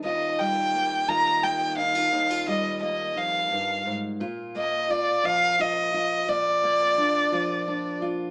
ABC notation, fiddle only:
X:1
M:6/8
L:1/8
Q:3/8=58
K:Eb
V:1 name="Fiddle"
e g2 b g f- | f e e f2 z | z e d f e2 | d4- d z |]